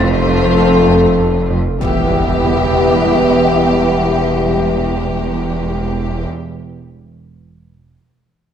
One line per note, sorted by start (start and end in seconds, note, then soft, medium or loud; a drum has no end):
0.00 1.58 F1 loud
0.00 1.80 F1 medium
0.00 0.14 F2 loud
0.00 1.58 F2 loud
0.00 1.81 F3 medium
0.00 1.57 A3 loud
0.00 1.46 C4 loud
0.00 1.81 C4 medium
0.00 1.56 F4 loud
0.00 1.81 F4 medium
0.00 1.46 A4 loud
0.00 1.81 A4 medium
0.00 1.57 C5 loud
0.00 1.77 A6 medium
0.27 0.45 F2 medium
0.57 0.76 F2 medium
0.89 1.07 F2 loud
1.19 1.38 F2 medium
1.50 1.69 F2 medium
1.80 6.26 E1 medium
1.80 6.26 E2 medium
1.80 6.26 G3 medium
1.80 6.26 B3 medium
1.80 6.26 B3 loud
1.80 6.27 B3 medium
1.80 6.26 E4 loud
1.80 6.26 G4 medium
1.80 6.26 B4 medium
1.80 6.27 E5 medium
1.80 impact medium